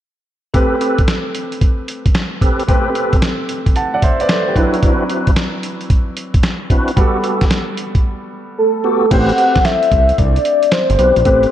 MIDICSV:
0, 0, Header, 1, 6, 480
1, 0, Start_track
1, 0, Tempo, 535714
1, 485, Time_signature, 4, 2, 24, 8
1, 10317, End_track
2, 0, Start_track
2, 0, Title_t, "Soft synth lead"
2, 0, Program_c, 0, 80
2, 7691, Note_on_c, 0, 69, 97
2, 8168, Note_on_c, 0, 78, 110
2, 8181, Note_off_c, 0, 69, 0
2, 8646, Note_on_c, 0, 76, 99
2, 8659, Note_off_c, 0, 78, 0
2, 9124, Note_on_c, 0, 74, 112
2, 9137, Note_off_c, 0, 76, 0
2, 9602, Note_on_c, 0, 72, 95
2, 9616, Note_off_c, 0, 74, 0
2, 10078, Note_off_c, 0, 72, 0
2, 10084, Note_on_c, 0, 72, 97
2, 10317, Note_off_c, 0, 72, 0
2, 10317, End_track
3, 0, Start_track
3, 0, Title_t, "Grand piano"
3, 0, Program_c, 1, 0
3, 480, Note_on_c, 1, 57, 66
3, 487, Note_on_c, 1, 60, 61
3, 494, Note_on_c, 1, 67, 62
3, 501, Note_on_c, 1, 71, 76
3, 648, Control_c, 1, 64, 127
3, 2367, Note_off_c, 1, 57, 0
3, 2370, Note_off_c, 1, 60, 0
3, 2374, Note_off_c, 1, 67, 0
3, 2377, Note_off_c, 1, 71, 0
3, 2397, Note_on_c, 1, 57, 66
3, 2405, Note_on_c, 1, 60, 66
3, 2412, Note_on_c, 1, 67, 63
3, 2419, Note_on_c, 1, 71, 76
3, 3349, Note_off_c, 1, 67, 0
3, 3353, Note_off_c, 1, 71, 0
3, 3369, Note_on_c, 1, 81, 64
3, 3375, Note_on_c, 1, 78, 50
3, 3515, Note_off_c, 1, 78, 0
3, 3519, Note_off_c, 1, 81, 0
3, 3529, Note_on_c, 1, 78, 65
3, 3534, Note_on_c, 1, 74, 58
3, 3603, Note_off_c, 1, 78, 0
3, 3606, Note_off_c, 1, 74, 0
3, 3609, Note_on_c, 1, 76, 68
3, 3615, Note_on_c, 1, 72, 65
3, 3758, Note_off_c, 1, 76, 0
3, 3762, Note_off_c, 1, 72, 0
3, 3770, Note_on_c, 1, 74, 70
3, 3776, Note_on_c, 1, 71, 58
3, 3844, Note_off_c, 1, 74, 0
3, 3847, Note_off_c, 1, 71, 0
3, 3851, Note_on_c, 1, 72, 59
3, 3856, Note_on_c, 1, 69, 49
3, 4000, Note_off_c, 1, 72, 0
3, 4002, Note_off_c, 1, 69, 0
3, 4010, Note_on_c, 1, 71, 59
3, 4016, Note_on_c, 1, 67, 51
3, 4047, Note_off_c, 1, 57, 0
3, 4051, Note_off_c, 1, 60, 0
3, 4079, Note_on_c, 1, 54, 67
3, 4085, Note_on_c, 1, 60, 62
3, 4088, Note_off_c, 1, 71, 0
3, 4091, Note_on_c, 1, 62, 62
3, 4096, Note_on_c, 1, 64, 61
3, 4097, Control_c, 1, 64, 0
3, 4101, Note_on_c, 1, 71, 74
3, 4238, Note_off_c, 1, 67, 0
3, 4239, Control_c, 1, 64, 127
3, 5966, Note_off_c, 1, 54, 0
3, 5969, Note_off_c, 1, 60, 0
3, 5972, Note_off_c, 1, 62, 0
3, 5974, Note_off_c, 1, 64, 0
3, 5977, Note_off_c, 1, 71, 0
3, 6240, Note_on_c, 1, 55, 72
3, 6247, Note_on_c, 1, 59, 64
3, 6254, Note_on_c, 1, 66, 65
3, 6258, Control_c, 1, 64, 0
3, 6261, Note_on_c, 1, 69, 70
3, 6420, Control_c, 1, 64, 127
3, 8127, Note_off_c, 1, 55, 0
3, 8130, Note_off_c, 1, 59, 0
3, 8133, Note_off_c, 1, 66, 0
3, 8137, Note_off_c, 1, 69, 0
3, 8159, Note_on_c, 1, 57, 65
3, 8166, Note_on_c, 1, 59, 44
3, 8173, Note_on_c, 1, 67, 55
3, 8175, Control_c, 1, 64, 0
3, 8180, Note_on_c, 1, 72, 70
3, 8224, Note_on_c, 1, 60, 57
3, 8242, Note_off_c, 1, 59, 0
3, 8341, Control_c, 1, 64, 127
3, 10046, Note_off_c, 1, 57, 0
3, 10053, Note_off_c, 1, 67, 0
3, 10057, Note_off_c, 1, 72, 0
3, 10072, Note_off_c, 1, 60, 0
3, 10078, Note_on_c, 1, 57, 60
3, 10085, Note_on_c, 1, 60, 59
3, 10092, Note_on_c, 1, 67, 56
3, 10100, Note_on_c, 1, 71, 65
3, 10317, Note_off_c, 1, 57, 0
3, 10317, Note_off_c, 1, 60, 0
3, 10317, Note_off_c, 1, 67, 0
3, 10317, Note_off_c, 1, 71, 0
3, 10317, End_track
4, 0, Start_track
4, 0, Title_t, "Tonewheel organ"
4, 0, Program_c, 2, 16
4, 482, Note_on_c, 2, 60, 84
4, 484, Note_on_c, 2, 67, 71
4, 486, Note_on_c, 2, 69, 75
4, 487, Note_on_c, 2, 71, 89
4, 677, Note_off_c, 2, 60, 0
4, 678, Note_off_c, 2, 67, 0
4, 679, Note_off_c, 2, 69, 0
4, 680, Note_off_c, 2, 71, 0
4, 722, Note_on_c, 2, 60, 66
4, 724, Note_on_c, 2, 67, 64
4, 726, Note_on_c, 2, 69, 64
4, 727, Note_on_c, 2, 71, 82
4, 917, Note_off_c, 2, 60, 0
4, 918, Note_off_c, 2, 67, 0
4, 919, Note_off_c, 2, 69, 0
4, 919, Note_off_c, 2, 71, 0
4, 2162, Note_on_c, 2, 60, 64
4, 2163, Note_on_c, 2, 67, 59
4, 2165, Note_on_c, 2, 69, 57
4, 2167, Note_on_c, 2, 71, 76
4, 2357, Note_off_c, 2, 60, 0
4, 2358, Note_off_c, 2, 67, 0
4, 2359, Note_off_c, 2, 69, 0
4, 2359, Note_off_c, 2, 71, 0
4, 2401, Note_on_c, 2, 60, 86
4, 2402, Note_on_c, 2, 67, 79
4, 2404, Note_on_c, 2, 69, 79
4, 2406, Note_on_c, 2, 71, 93
4, 2596, Note_off_c, 2, 60, 0
4, 2597, Note_off_c, 2, 67, 0
4, 2598, Note_off_c, 2, 69, 0
4, 2599, Note_off_c, 2, 71, 0
4, 2641, Note_on_c, 2, 60, 68
4, 2642, Note_on_c, 2, 67, 63
4, 2645, Note_on_c, 2, 69, 65
4, 2646, Note_on_c, 2, 71, 74
4, 2836, Note_off_c, 2, 60, 0
4, 2837, Note_off_c, 2, 67, 0
4, 2838, Note_off_c, 2, 69, 0
4, 2839, Note_off_c, 2, 71, 0
4, 4083, Note_on_c, 2, 60, 71
4, 4083, Note_on_c, 2, 62, 62
4, 4085, Note_on_c, 2, 64, 62
4, 4087, Note_on_c, 2, 66, 63
4, 4089, Note_on_c, 2, 71, 73
4, 4277, Note_off_c, 2, 60, 0
4, 4278, Note_off_c, 2, 62, 0
4, 4278, Note_off_c, 2, 64, 0
4, 4279, Note_off_c, 2, 66, 0
4, 4280, Note_off_c, 2, 71, 0
4, 4323, Note_on_c, 2, 60, 88
4, 4325, Note_on_c, 2, 62, 75
4, 4327, Note_on_c, 2, 64, 80
4, 4328, Note_on_c, 2, 66, 78
4, 4329, Note_on_c, 2, 71, 86
4, 4517, Note_off_c, 2, 60, 0
4, 4518, Note_off_c, 2, 62, 0
4, 4519, Note_off_c, 2, 64, 0
4, 4520, Note_off_c, 2, 66, 0
4, 4520, Note_off_c, 2, 71, 0
4, 4563, Note_on_c, 2, 60, 66
4, 4566, Note_on_c, 2, 62, 65
4, 4566, Note_on_c, 2, 64, 70
4, 4568, Note_on_c, 2, 66, 67
4, 4569, Note_on_c, 2, 71, 72
4, 4758, Note_off_c, 2, 60, 0
4, 4759, Note_off_c, 2, 62, 0
4, 4759, Note_off_c, 2, 64, 0
4, 4760, Note_off_c, 2, 66, 0
4, 4761, Note_off_c, 2, 71, 0
4, 6002, Note_on_c, 2, 60, 71
4, 6003, Note_on_c, 2, 62, 68
4, 6005, Note_on_c, 2, 64, 66
4, 6006, Note_on_c, 2, 66, 66
4, 6007, Note_on_c, 2, 71, 75
4, 6197, Note_off_c, 2, 60, 0
4, 6197, Note_off_c, 2, 62, 0
4, 6198, Note_off_c, 2, 64, 0
4, 6199, Note_off_c, 2, 66, 0
4, 6199, Note_off_c, 2, 71, 0
4, 6240, Note_on_c, 2, 59, 81
4, 6242, Note_on_c, 2, 66, 80
4, 6244, Note_on_c, 2, 67, 79
4, 6246, Note_on_c, 2, 69, 94
4, 6436, Note_off_c, 2, 59, 0
4, 6437, Note_off_c, 2, 66, 0
4, 6438, Note_off_c, 2, 67, 0
4, 6439, Note_off_c, 2, 69, 0
4, 6480, Note_on_c, 2, 59, 65
4, 6482, Note_on_c, 2, 66, 63
4, 6484, Note_on_c, 2, 67, 61
4, 6485, Note_on_c, 2, 69, 74
4, 6676, Note_off_c, 2, 59, 0
4, 6677, Note_off_c, 2, 66, 0
4, 6678, Note_off_c, 2, 67, 0
4, 6679, Note_off_c, 2, 69, 0
4, 7920, Note_on_c, 2, 59, 73
4, 7922, Note_on_c, 2, 66, 60
4, 7924, Note_on_c, 2, 67, 62
4, 7926, Note_on_c, 2, 69, 80
4, 8116, Note_off_c, 2, 59, 0
4, 8117, Note_off_c, 2, 66, 0
4, 8118, Note_off_c, 2, 67, 0
4, 8119, Note_off_c, 2, 69, 0
4, 8161, Note_on_c, 2, 60, 87
4, 8165, Note_on_c, 2, 67, 81
4, 8167, Note_on_c, 2, 71, 97
4, 8357, Note_off_c, 2, 60, 0
4, 8358, Note_off_c, 2, 67, 0
4, 8360, Note_off_c, 2, 71, 0
4, 8403, Note_on_c, 2, 60, 75
4, 8405, Note_on_c, 2, 67, 64
4, 8408, Note_on_c, 2, 71, 83
4, 8597, Note_off_c, 2, 60, 0
4, 8599, Note_off_c, 2, 67, 0
4, 8600, Note_off_c, 2, 71, 0
4, 9840, Note_on_c, 2, 60, 67
4, 9843, Note_on_c, 2, 67, 64
4, 9846, Note_on_c, 2, 71, 74
4, 10036, Note_off_c, 2, 60, 0
4, 10037, Note_off_c, 2, 67, 0
4, 10039, Note_off_c, 2, 71, 0
4, 10082, Note_on_c, 2, 60, 88
4, 10085, Note_on_c, 2, 67, 84
4, 10087, Note_on_c, 2, 71, 101
4, 10277, Note_off_c, 2, 60, 0
4, 10278, Note_off_c, 2, 67, 0
4, 10279, Note_off_c, 2, 71, 0
4, 10317, End_track
5, 0, Start_track
5, 0, Title_t, "Analog synth bass"
5, 0, Program_c, 3, 38
5, 8165, Note_on_c, 3, 33, 111
5, 8348, Note_off_c, 3, 33, 0
5, 8563, Note_on_c, 3, 36, 49
5, 8595, Note_off_c, 3, 36, 0
5, 8885, Note_on_c, 3, 36, 89
5, 9068, Note_off_c, 3, 36, 0
5, 9125, Note_on_c, 3, 36, 95
5, 9308, Note_off_c, 3, 36, 0
5, 9764, Note_on_c, 3, 31, 94
5, 9826, Note_off_c, 3, 31, 0
5, 9843, Note_on_c, 3, 35, 98
5, 9965, Note_off_c, 3, 35, 0
5, 10003, Note_on_c, 3, 34, 86
5, 10065, Note_off_c, 3, 34, 0
5, 10084, Note_on_c, 3, 33, 100
5, 10267, Note_off_c, 3, 33, 0
5, 10317, End_track
6, 0, Start_track
6, 0, Title_t, "Drums"
6, 486, Note_on_c, 9, 36, 100
6, 486, Note_on_c, 9, 42, 67
6, 575, Note_off_c, 9, 36, 0
6, 575, Note_off_c, 9, 42, 0
6, 725, Note_on_c, 9, 42, 56
6, 815, Note_off_c, 9, 42, 0
6, 882, Note_on_c, 9, 42, 51
6, 884, Note_on_c, 9, 36, 95
6, 965, Note_off_c, 9, 42, 0
6, 965, Note_on_c, 9, 42, 75
6, 967, Note_on_c, 9, 38, 114
6, 974, Note_off_c, 9, 36, 0
6, 1054, Note_off_c, 9, 42, 0
6, 1056, Note_off_c, 9, 38, 0
6, 1206, Note_on_c, 9, 42, 72
6, 1296, Note_off_c, 9, 42, 0
6, 1363, Note_on_c, 9, 42, 45
6, 1446, Note_off_c, 9, 42, 0
6, 1446, Note_on_c, 9, 36, 93
6, 1446, Note_on_c, 9, 42, 60
6, 1536, Note_off_c, 9, 36, 0
6, 1536, Note_off_c, 9, 42, 0
6, 1686, Note_on_c, 9, 42, 73
6, 1776, Note_off_c, 9, 42, 0
6, 1843, Note_on_c, 9, 36, 86
6, 1843, Note_on_c, 9, 42, 55
6, 1923, Note_off_c, 9, 42, 0
6, 1923, Note_on_c, 9, 42, 61
6, 1925, Note_on_c, 9, 38, 114
6, 1933, Note_off_c, 9, 36, 0
6, 2012, Note_off_c, 9, 42, 0
6, 2015, Note_off_c, 9, 38, 0
6, 2163, Note_on_c, 9, 36, 81
6, 2168, Note_on_c, 9, 42, 65
6, 2253, Note_off_c, 9, 36, 0
6, 2258, Note_off_c, 9, 42, 0
6, 2325, Note_on_c, 9, 42, 48
6, 2406, Note_off_c, 9, 42, 0
6, 2406, Note_on_c, 9, 36, 104
6, 2406, Note_on_c, 9, 42, 74
6, 2495, Note_off_c, 9, 36, 0
6, 2495, Note_off_c, 9, 42, 0
6, 2646, Note_on_c, 9, 42, 58
6, 2735, Note_off_c, 9, 42, 0
6, 2803, Note_on_c, 9, 42, 50
6, 2804, Note_on_c, 9, 36, 92
6, 2885, Note_off_c, 9, 42, 0
6, 2885, Note_on_c, 9, 42, 77
6, 2887, Note_on_c, 9, 38, 112
6, 2894, Note_off_c, 9, 36, 0
6, 2975, Note_off_c, 9, 42, 0
6, 2977, Note_off_c, 9, 38, 0
6, 3126, Note_on_c, 9, 42, 72
6, 3215, Note_off_c, 9, 42, 0
6, 3283, Note_on_c, 9, 36, 78
6, 3283, Note_on_c, 9, 42, 45
6, 3366, Note_off_c, 9, 42, 0
6, 3366, Note_on_c, 9, 42, 63
6, 3372, Note_off_c, 9, 36, 0
6, 3456, Note_off_c, 9, 42, 0
6, 3605, Note_on_c, 9, 42, 75
6, 3606, Note_on_c, 9, 36, 82
6, 3695, Note_off_c, 9, 42, 0
6, 3696, Note_off_c, 9, 36, 0
6, 3763, Note_on_c, 9, 42, 49
6, 3842, Note_off_c, 9, 42, 0
6, 3842, Note_on_c, 9, 42, 67
6, 3845, Note_on_c, 9, 38, 120
6, 3932, Note_off_c, 9, 42, 0
6, 3935, Note_off_c, 9, 38, 0
6, 4084, Note_on_c, 9, 36, 76
6, 4087, Note_on_c, 9, 42, 63
6, 4173, Note_off_c, 9, 36, 0
6, 4177, Note_off_c, 9, 42, 0
6, 4244, Note_on_c, 9, 42, 49
6, 4324, Note_off_c, 9, 42, 0
6, 4324, Note_on_c, 9, 42, 70
6, 4325, Note_on_c, 9, 36, 105
6, 4414, Note_off_c, 9, 42, 0
6, 4415, Note_off_c, 9, 36, 0
6, 4565, Note_on_c, 9, 42, 60
6, 4655, Note_off_c, 9, 42, 0
6, 4722, Note_on_c, 9, 42, 49
6, 4724, Note_on_c, 9, 36, 89
6, 4804, Note_off_c, 9, 42, 0
6, 4804, Note_on_c, 9, 42, 77
6, 4807, Note_on_c, 9, 38, 121
6, 4814, Note_off_c, 9, 36, 0
6, 4894, Note_off_c, 9, 42, 0
6, 4896, Note_off_c, 9, 38, 0
6, 5046, Note_on_c, 9, 42, 71
6, 5136, Note_off_c, 9, 42, 0
6, 5203, Note_on_c, 9, 42, 41
6, 5286, Note_off_c, 9, 42, 0
6, 5286, Note_on_c, 9, 36, 96
6, 5286, Note_on_c, 9, 42, 62
6, 5376, Note_off_c, 9, 36, 0
6, 5376, Note_off_c, 9, 42, 0
6, 5525, Note_on_c, 9, 42, 77
6, 5615, Note_off_c, 9, 42, 0
6, 5682, Note_on_c, 9, 42, 56
6, 5683, Note_on_c, 9, 36, 86
6, 5762, Note_off_c, 9, 42, 0
6, 5762, Note_on_c, 9, 42, 63
6, 5765, Note_on_c, 9, 38, 111
6, 5773, Note_off_c, 9, 36, 0
6, 5852, Note_off_c, 9, 42, 0
6, 5855, Note_off_c, 9, 38, 0
6, 6003, Note_on_c, 9, 36, 83
6, 6005, Note_on_c, 9, 42, 61
6, 6093, Note_off_c, 9, 36, 0
6, 6095, Note_off_c, 9, 42, 0
6, 6163, Note_on_c, 9, 42, 49
6, 6244, Note_off_c, 9, 42, 0
6, 6244, Note_on_c, 9, 42, 71
6, 6245, Note_on_c, 9, 36, 110
6, 6334, Note_off_c, 9, 42, 0
6, 6335, Note_off_c, 9, 36, 0
6, 6484, Note_on_c, 9, 42, 60
6, 6574, Note_off_c, 9, 42, 0
6, 6641, Note_on_c, 9, 42, 55
6, 6642, Note_on_c, 9, 38, 71
6, 6644, Note_on_c, 9, 36, 97
6, 6724, Note_off_c, 9, 42, 0
6, 6724, Note_on_c, 9, 42, 78
6, 6726, Note_off_c, 9, 38, 0
6, 6726, Note_on_c, 9, 38, 113
6, 6733, Note_off_c, 9, 36, 0
6, 6814, Note_off_c, 9, 42, 0
6, 6816, Note_off_c, 9, 38, 0
6, 6966, Note_on_c, 9, 42, 74
6, 7055, Note_off_c, 9, 42, 0
6, 7122, Note_on_c, 9, 36, 85
6, 7122, Note_on_c, 9, 42, 41
6, 7212, Note_off_c, 9, 36, 0
6, 7212, Note_off_c, 9, 42, 0
6, 8164, Note_on_c, 9, 42, 79
6, 8164, Note_on_c, 9, 49, 76
6, 8165, Note_on_c, 9, 36, 112
6, 8254, Note_off_c, 9, 36, 0
6, 8254, Note_off_c, 9, 42, 0
6, 8254, Note_off_c, 9, 49, 0
6, 8324, Note_on_c, 9, 42, 46
6, 8405, Note_off_c, 9, 42, 0
6, 8405, Note_on_c, 9, 42, 59
6, 8495, Note_off_c, 9, 42, 0
6, 8561, Note_on_c, 9, 42, 53
6, 8562, Note_on_c, 9, 38, 74
6, 8563, Note_on_c, 9, 36, 98
6, 8644, Note_off_c, 9, 42, 0
6, 8644, Note_on_c, 9, 42, 78
6, 8646, Note_off_c, 9, 38, 0
6, 8646, Note_on_c, 9, 38, 120
6, 8653, Note_off_c, 9, 36, 0
6, 8733, Note_off_c, 9, 42, 0
6, 8735, Note_off_c, 9, 38, 0
6, 8804, Note_on_c, 9, 42, 49
6, 8885, Note_off_c, 9, 42, 0
6, 8885, Note_on_c, 9, 36, 98
6, 8885, Note_on_c, 9, 42, 74
6, 8974, Note_off_c, 9, 42, 0
6, 8975, Note_off_c, 9, 36, 0
6, 9041, Note_on_c, 9, 42, 45
6, 9124, Note_off_c, 9, 42, 0
6, 9124, Note_on_c, 9, 42, 70
6, 9125, Note_on_c, 9, 36, 100
6, 9213, Note_off_c, 9, 42, 0
6, 9214, Note_off_c, 9, 36, 0
6, 9284, Note_on_c, 9, 42, 50
6, 9364, Note_off_c, 9, 42, 0
6, 9364, Note_on_c, 9, 42, 77
6, 9453, Note_off_c, 9, 42, 0
6, 9521, Note_on_c, 9, 42, 54
6, 9601, Note_off_c, 9, 42, 0
6, 9601, Note_on_c, 9, 42, 64
6, 9603, Note_on_c, 9, 38, 120
6, 9690, Note_off_c, 9, 42, 0
6, 9693, Note_off_c, 9, 38, 0
6, 9765, Note_on_c, 9, 42, 59
6, 9845, Note_off_c, 9, 42, 0
6, 9845, Note_on_c, 9, 42, 67
6, 9935, Note_off_c, 9, 42, 0
6, 10002, Note_on_c, 9, 42, 50
6, 10083, Note_off_c, 9, 42, 0
6, 10083, Note_on_c, 9, 42, 77
6, 10084, Note_on_c, 9, 36, 102
6, 10172, Note_off_c, 9, 42, 0
6, 10173, Note_off_c, 9, 36, 0
6, 10242, Note_on_c, 9, 42, 45
6, 10317, Note_off_c, 9, 42, 0
6, 10317, End_track
0, 0, End_of_file